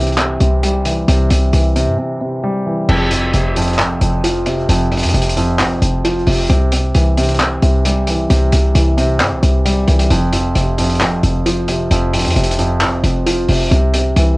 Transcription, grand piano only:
0.00 0.18 C3 medium
0.00 0.84 E3 medium
0.18 0.39 C3 medium
0.40 1.07 C3 medium
0.63 1.76 G3 medium
0.86 1.52 E3 medium
1.08 1.29 C3 medium
1.31 1.74 C3 medium
1.53 2.65 E3 medium
1.76 1.97 C3 medium
1.98 2.19 C3 medium
2.21 2.89 C3 medium
2.43 2.89 G3 medium
2.66 2.89 E3 medium
2.89 3.10 F2 medium
3.11 3.55 F2 medium
3.34 4.45 C3 medium
3.57 3.77 F2 medium
3.79 4.00 F2 medium
4.01 4.68 F2 medium
4.24 5.37 F3 loud
4.47 5.13 C3 medium
4.69 4.90 F2 medium
4.92 5.35 F2 medium
5.14 6.26 C3 medium
5.37 5.58 F2 loud
5.59 5.80 F2 medium
5.82 6.50 F2 medium
6.04 6.50 F3 loud
6.27 6.48 C3 medium
6.50 6.71 C3 medium
6.72 7.16 C3 medium
6.95 8.06 E3 medium
7.17 7.38 C3 medium
7.40 7.61 C3 medium
7.62 8.29 C3 medium
7.85 8.98 G3 medium
8.07 8.73 E3 medium
8.30 8.51 C3 medium
8.53 8.96 C3 medium
8.75 9.86 E3 medium
8.98 9.19 C3 loud
9.20 9.41 C3 medium
9.43 10.10 C3 medium
9.65 10.10 G3 loud
9.88 10.10 E3 medium
10.10 10.32 F2 medium
10.33 10.77 F2 medium
10.56 11.67 C3 medium
10.78 10.99 F2 medium
11.01 11.22 F2 medium
11.23 11.89 F2 medium
11.46 12.59 F3 loud
11.68 12.35 C3 medium
11.91 12.12 F2 medium
12.14 12.57 F2 medium
12.36 13.47 C3 medium
12.59 12.80 F2 medium
12.81 13.02 F2 medium
13.04 13.71 F2 medium
13.26 13.71 F3 loud
13.49 13.70 C3 medium
13.71 13.93 C3 medium
13.94 14.38 C3 medium
14.17 14.38 E3 medium

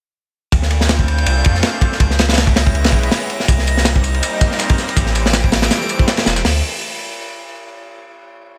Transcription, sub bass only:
0.52 1.25 D2 loud
1.26 1.43 C2 loud
1.46 1.62 F2 medium
2.00 2.73 C#2 loud
2.74 2.91 C#2 loud
2.92 3.09 B1 medium
3.48 4.21 C2 loud
4.97 5.69 A1 loud
6.26 6.43 E1 medium
6.45 6.62 D2 loud

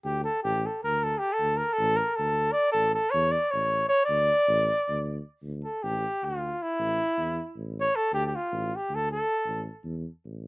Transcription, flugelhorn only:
0.05 0.24 G4 medium
0.24 0.42 A4 medium
0.43 0.68 G4 loud
0.66 0.83 A4 medium
0.84 1.05 A#4 medium
1.03 1.20 A4 medium
1.19 1.35 G4 loud
1.33 1.59 A4 loud
1.57 1.75 A#4 medium
1.73 1.98 A4 loud
1.97 2.17 A#4 medium
2.16 2.54 A4 medium
2.52 2.71 D5 loud
2.72 2.93 A4 loud
2.94 3.12 A4 medium
3.11 3.33 C#5 loud
3.32 3.52 D5 medium
3.51 3.88 C#5 medium
3.89 4.04 C#5 loud
4.05 5.20 D5 loud
5.64 5.84 A4 medium
5.83 6.26 G4 medium
6.25 6.64 F4 medium
6.63 7.58 E4 loud
7.81 7.97 C#5 loud
7.96 8.13 A4 medium
8.14 8.26 G4 loud
8.26 8.37 G4 medium
8.36 8.77 F4 medium
8.76 8.96 G4 medium
8.95 9.11 A4 medium
9.12 9.64 A4 medium

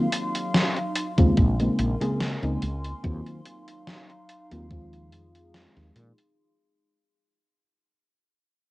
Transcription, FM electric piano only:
1.17 1.54 C#3 medium
1.17 1.54 G#3 medium
1.17 1.54 A#3 medium
1.17 1.55 C4 medium
1.17 1.55 F4 medium
1.59 1.96 C#3 medium
1.59 1.96 G#3 medium
1.59 1.96 A#3 medium
1.59 1.96 C4 medium
1.59 1.96 D#4 medium
2.00 2.37 C#3 medium
2.00 2.37 G#3 medium
2.00 2.38 A#3 medium
2.00 2.38 C4 medium
2.00 2.38 G#4 loud
2.42 2.64 C#3 medium
2.42 2.64 G#3 medium
2.42 2.64 A#3 medium
2.42 2.64 C4 medium
2.42 2.65 D#4 medium
3.03 3.40 D#3 medium
3.03 3.40 F#3 medium
3.03 3.41 A#3 medium
3.03 3.41 C4 medium
3.03 3.41 F4 medium
4.51 4.66 D#3 medium
4.51 4.66 F#3 medium
4.51 4.66 A#3 medium
4.51 4.66 C4 medium
4.51 4.66 F4 medium
4.69 6.12 D#3 medium
4.69 6.12 F3 medium
4.69 6.13 G#3 medium
4.69 6.13 C4 medium
4.69 6.13 F4 medium

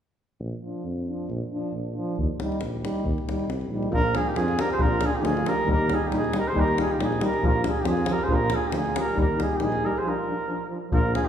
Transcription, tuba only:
0.40 0.52 A#1 medium
0.84 1.09 F2 medium
1.30 1.41 A#1 medium
1.73 1.97 A#1 medium
2.17 2.29 D#2 medium
2.61 2.85 A#1 medium
3.04 3.16 D#2 medium
3.46 3.67 C2 medium
3.69 3.89 A#1 medium
3.91 4.15 A#1 medium
4.36 4.60 F2 medium
4.79 5.03 A#1 medium
5.22 5.46 D2 medium
5.66 5.91 D#2 medium
6.10 6.35 A#1 medium
6.53 6.78 D#2 medium
6.99 7.23 A#1 medium
7.42 7.66 A#1 medium
7.84 8.08 F2 medium
8.29 8.53 A#1 medium
8.73 8.97 D2 medium
9.16 9.40 D#2 medium
9.59 9.84 A#1 medium
10.92 11.16 A#1 loud

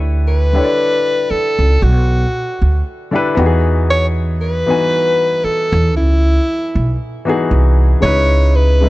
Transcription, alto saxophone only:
0.28 1.32 B4 loud
1.31 1.84 A4 medium
1.83 2.86 F#4 medium
3.90 4.06 C#5 loud
4.41 5.46 B4 loud
5.44 5.96 A4 medium
5.96 6.96 E4 medium
8.03 8.57 C#5 loud
8.55 8.89 B4 medium

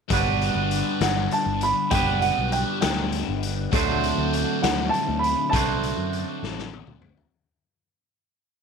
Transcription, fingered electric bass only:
0.11 0.49 G1 medium
0.55 0.81 G1 medium
1.01 1.26 G1 loud
1.46 1.72 G1 medium
1.92 2.30 F#1 loud
2.38 2.63 B1 medium
2.83 3.21 D2 loud
3.28 3.66 G1 medium
3.73 4.11 D2 loud
4.18 4.43 D2 medium
4.63 4.89 D2 loud
5.08 5.34 D2 medium
5.53 5.92 C2 loud
5.97 6.23 F#2 medium
6.43 6.81 A1 medium
6.88 7.26 D2 loud

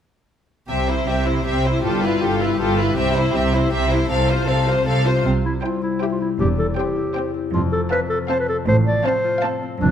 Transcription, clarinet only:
5.25 5.34 C4 medium
5.45 5.54 E4 medium
5.64 5.83 F4 medium
5.83 6.01 E4 soft
6.02 6.06 G4 medium
6.12 6.16 F4 soft
6.21 6.29 E4 soft
6.40 6.48 G4 medium
6.58 6.67 A4 medium
6.77 7.34 G4 medium
7.53 7.62 F4 medium
7.72 7.81 A4 medium
7.91 8.00 B4 medium
8.09 8.18 A4 medium
8.29 8.39 C5 medium
8.40 8.48 B4 medium
8.49 8.57 A4 medium
8.68 8.77 C5 medium
8.87 9.07 D5 medium
9.05 9.62 C5 medium
9.81 9.91 D4 medium

